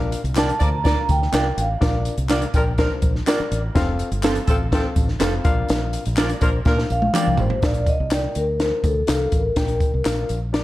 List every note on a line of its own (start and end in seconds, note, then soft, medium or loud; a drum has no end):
0.00 0.14 A#1 loud
0.00 0.56 A#2 medium
0.00 0.21 D4 loud
0.00 0.21 F4 loud
0.00 0.21 A#4 loud
0.00 0.21 F5 loud
0.12 closed hi-hat medium
0.12 tambourine medium
0.24 0.50 C2 medium
0.24 closed hi-hat medium
0.35 0.46 A#3 medium
0.35 0.53 D4 medium
0.35 0.49 D4 medium
0.35 0.53 F4 medium
0.35 0.47 F4 medium
0.35 0.49 F4 medium
0.35 0.53 A#4 medium
0.35 0.49 A#4 medium
0.35 0.46 D5 loud
0.35 0.49 D5 medium
0.35 0.53 G5 medium
0.35 0.62 A5 loud
0.35 snare loud
0.35 clap medium
0.35 closed hi-hat medium
0.35 tambourine medium
0.49 closed hi-hat medium
0.60 0.96 D2 medium
0.60 0.68 A#3 loud
0.60 0.77 D4 medium
0.60 0.68 F4 loud
0.60 0.78 F4 medium
0.60 0.78 A#4 medium
0.60 0.78 C5 medium
0.60 0.68 D5 loud
0.60 0.84 A#5 loud
0.60 kick medium
0.60 closed hi-hat medium
0.60 tambourine medium
0.84 1.00 A#3 medium
0.84 1.18 D4 medium
0.84 1.18 F4 medium
0.84 1.00 F4 medium
0.84 1.18 A#4 medium
0.84 1.00 D5 loud
0.84 1.18 F5 medium
0.84 1.10 A#5 loud
0.84 kick medium
0.84 snare loud
0.84 closed hi-hat medium
0.84 tambourine soft
1.09 1.27 D2 medium
1.09 1.60 G5 medium
1.09 kick medium
1.09 closed hi-hat medium
1.09 tambourine soft
1.22 snare soft
1.32 1.51 C2 medium
1.32 1.66 D4 medium
1.32 1.45 D4 medium
1.32 1.67 F4 medium
1.32 1.46 F4 loud
1.32 1.66 A#4 medium
1.32 1.46 A#4 medium
1.32 1.46 D5 medium
1.32 1.67 G5 medium
1.32 snare loud
1.32 clap loud
1.32 closed hi-hat medium
1.32 tambourine loud
1.57 1.75 A1 medium
1.57 2.04 F5 medium
1.57 closed hi-hat medium
1.57 tambourine soft
1.81 2.08 A#1 loud
1.81 2.50 A#2 medium
1.81 2.15 D4 loud
1.81 2.15 F4 loud
1.81 2.15 A#4 medium
1.81 2.15 D5 loud
1.81 kick loud
1.81 snare loud
1.81 closed hi-hat medium
1.81 tambourine medium
2.05 closed hi-hat medium
2.05 tambourine medium
2.18 2.44 C2 medium
2.18 closed hi-hat medium
2.29 2.41 A#3 medium
2.29 2.42 D4 medium
2.29 2.47 D4 medium
2.29 2.43 F4 medium
2.29 2.47 F4 medium
2.29 2.41 F4 medium
2.29 2.43 A#4 medium
2.29 2.47 A#4 medium
2.29 2.43 D5 medium
2.29 2.41 D5 medium
2.29 2.47 F5 medium
2.29 snare loud
2.29 clap loud
2.29 closed hi-hat medium
2.29 tambourine loud
2.42 closed hi-hat medium
2.54 2.89 A#1 medium
2.54 2.63 F3 medium
2.54 2.71 D4 medium
2.54 2.63 D4 loud
2.54 2.71 F4 medium
2.54 2.71 A#4 medium
2.54 2.63 A#4 loud
2.54 2.71 G5 medium
2.54 kick medium
2.54 closed hi-hat medium
2.54 tambourine medium
2.78 2.94 F3 loud
2.78 2.94 D4 medium
2.78 3.12 D4 medium
2.78 3.12 F4 medium
2.78 2.94 A#4 loud
2.78 3.12 A#4 medium
2.78 3.13 C5 medium
2.78 kick medium
2.78 snare loud
2.78 closed hi-hat medium
2.78 tambourine soft
3.02 3.20 A#1 medium
3.02 kick medium
3.02 closed hi-hat medium
3.02 tambourine medium
3.15 snare soft
3.27 3.60 D4 medium
3.27 3.40 D4 medium
3.27 3.61 F4 medium
3.27 3.40 F4 medium
3.27 3.61 A#4 medium
3.27 3.40 A#4 loud
3.27 3.61 D5 loud
3.27 3.40 D5 loud
3.27 snare loud
3.27 clap loud
3.27 closed hi-hat medium
3.27 tambourine loud
3.40 muted fingered electric bass stroke soft
3.52 3.69 A1 medium
3.52 closed hi-hat medium
3.75 4.02 F1 loud
3.75 4.09 C4 loud
3.75 4.09 F4 loud
3.75 4.09 A4 loud
3.75 4.10 F5 loud
3.75 kick loud
3.75 snare loud
3.75 closed hi-hat medium
3.75 tambourine medium
3.99 closed hi-hat medium
3.99 tambourine soft
4.11 4.38 G1 medium
4.11 closed hi-hat medium
4.23 4.34 F3 medium
4.23 4.36 C4 medium
4.23 4.41 C4 medium
4.23 4.34 C4 medium
4.23 4.36 F4 medium
4.23 4.41 F4 medium
4.23 4.34 A4 medium
4.23 4.37 A4 medium
4.23 4.41 A4 medium
4.23 4.37 C5 medium
4.23 4.41 F5 medium
4.23 snare loud
4.23 clap medium
4.23 closed hi-hat medium
4.23 tambourine loud
4.35 closed hi-hat medium
4.47 4.83 A1 medium
4.47 4.55 F3 loud
4.47 4.55 C4 medium
4.47 4.66 C4 medium
4.47 4.66 F4 medium
4.47 4.56 A4 loud
4.47 4.66 A4 medium
4.47 4.66 F5 medium
4.47 kick medium
4.47 closed hi-hat medium
4.47 tambourine medium
4.71 4.87 F3 medium
4.71 4.88 C4 loud
4.71 5.07 C4 medium
4.71 5.07 F4 medium
4.71 4.87 A4 medium
4.71 5.07 A4 medium
4.71 5.07 F5 medium
4.71 kick medium
4.71 snare loud
4.71 closed hi-hat medium
4.96 5.14 A1 medium
4.96 kick medium
4.96 closed hi-hat medium
4.96 tambourine medium
5.08 snare soft
5.20 5.38 F1 loud
5.20 5.33 C4 medium
5.20 5.45 C4 medium
5.20 5.33 F4 loud
5.20 5.43 F4 medium
5.20 5.45 A4 medium
5.20 5.33 A4 loud
5.20 5.34 C5 loud
5.20 5.44 F5 medium
5.20 snare loud
5.20 clap loud
5.20 closed hi-hat medium
5.20 tambourine loud
5.44 5.63 A#1 medium
5.44 6.13 A#2 medium
5.44 6.03 D4 medium
5.44 6.03 F4 medium
5.44 6.03 A#4 medium
5.44 6.03 F5 loud
5.44 kick loud
5.44 closed hi-hat medium
5.44 tambourine soft
5.68 5.96 A#1 loud
5.68 snare loud
5.68 closed hi-hat medium
5.68 tambourine medium
5.93 closed hi-hat medium
5.93 tambourine medium
6.05 6.33 A#1 medium
6.05 closed hi-hat medium
6.17 6.28 F3 medium
6.17 6.30 D4 medium
6.17 6.34 D4 medium
6.17 6.28 D4 medium
6.17 6.35 F4 medium
6.17 6.30 F4 medium
6.17 6.28 A#4 medium
6.17 6.35 A#4 medium
6.17 6.31 A#4 medium
6.17 6.35 D5 medium
6.17 6.31 D5 medium
6.17 snare loud
6.17 clap loud
6.17 closed hi-hat medium
6.17 tambourine loud
6.29 closed hi-hat medium
6.41 6.59 A#1 medium
6.41 6.50 F3 loud
6.41 6.58 D4 medium
6.41 6.50 D4 medium
6.41 6.58 F4 medium
6.41 6.59 A#4 medium
6.41 6.50 A#4 loud
6.41 6.59 C5 medium
6.41 kick medium
6.41 closed hi-hat medium
6.41 tambourine medium
6.65 6.83 A#2 loud
6.65 6.81 F3 medium
6.65 6.99 D4 medium
6.65 6.82 D4 medium
6.65 7.00 F4 medium
6.65 7.00 A#4 medium
6.65 6.82 A#4 medium
6.65 7.00 F5 medium
6.65 kick medium
6.65 snare medium
6.65 tambourine soft
6.78 snare medium
6.90 7.08 A#1 medium
6.90 7.41 F5 loud
6.90 tambourine medium
7.02 high tom medium
7.14 7.27 D4 medium
7.14 7.49 D4 medium
7.14 7.27 F4 medium
7.14 7.48 F4 medium
7.14 7.28 A#4 medium
7.14 7.49 A#4 medium
7.14 7.28 D5 loud
7.14 7.49 G5 medium
7.14 clap loud
7.14 mid tom medium
7.14 tambourine loud
7.27 7.36 C2 medium
7.37 7.48 G#1 medium
7.37 7.65 C5 medium
7.37 floor tom medium
7.37 tambourine soft
7.50 7.60 A1 medium
7.50 floor tom medium
7.62 7.89 A#1 loud
7.62 8.31 A#2 medium
7.62 7.97 D4 medium
7.62 7.96 F4 medium
7.62 7.97 A#4 medium
7.62 7.89 D5 medium
7.62 7.97 F5 medium
7.62 kick loud
7.62 snare loud
7.62 closed hi-hat medium
7.62 tambourine medium
7.74 closed hi-hat soft
7.86 7.99 D#5 medium
7.86 kick loud
7.86 closed hi-hat medium
7.86 tambourine soft
8.00 8.26 C2 medium
8.11 8.45 D4 medium
8.11 8.45 F4 medium
8.11 8.46 A#4 medium
8.11 8.23 D5 medium
8.11 8.46 G5 medium
8.11 snare loud
8.11 clap loud
8.11 closed hi-hat medium
8.11 tambourine loud
8.35 8.71 D2 medium
8.35 8.86 A#4 medium
8.35 closed hi-hat medium
8.35 tambourine medium
8.60 8.94 D4 medium
8.60 8.94 F4 medium
8.60 8.94 A#4 medium
8.60 8.94 C5 medium
8.60 snare medium
8.60 closed hi-hat medium
8.60 tambourine soft
8.84 9.02 D2 loud
8.84 9.35 A4 medium
8.84 kick medium
8.84 closed hi-hat medium
8.84 tambourine medium
9.07 9.26 C2 medium
9.07 9.42 D4 medium
9.07 9.42 F4 medium
9.07 9.42 A#4 medium
9.07 9.42 F5 medium
9.07 snare loud
9.07 clap loud
9.07 closed hi-hat medium
9.07 tambourine loud
9.32 9.50 A1 medium
9.32 kick medium
9.32 closed hi-hat medium
9.32 tambourine soft
9.36 10.27 A#4 medium
9.56 9.83 A#1 loud
9.56 10.25 A#2 medium
9.56 9.90 D4 medium
9.56 9.91 F4 medium
9.56 9.91 A#4 medium
9.56 9.91 G5 medium
9.56 kick medium
9.56 snare loud
9.56 closed hi-hat medium
9.56 tambourine medium
9.68 closed hi-hat soft
9.80 kick loud
9.80 closed hi-hat medium
9.80 tambourine soft
9.94 10.02 C2 medium
10.04 10.23 A#1 medium
10.04 10.39 D4 medium
10.04 10.39 F4 medium
10.04 10.39 A#4 medium
10.04 10.39 F5 medium
10.04 snare loud
10.04 clap medium
10.04 closed hi-hat medium
10.04 tambourine medium
10.29 10.64 A#1 medium
10.29 closed hi-hat medium
10.29 tambourine medium
10.53 10.64 D4 medium
10.53 10.64 F4 medium
10.53 10.64 A#4 medium
10.53 10.64 D5 medium
10.53 snare loud
10.53 closed hi-hat medium
10.53 tambourine soft